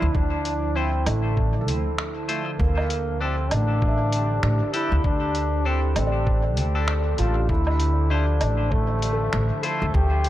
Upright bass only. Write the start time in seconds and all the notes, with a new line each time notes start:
0.02 D2
0.15 D2
1.07 A1
1.68 D2
2.60 D2
3.52 A1
4.43 A1
4.92 D2
5.04 D2
5.96 A1
6.57 D2
7.19 A1
7.49 D2
8.41 A1
9.33 A1
9.82 D2
9.94 D2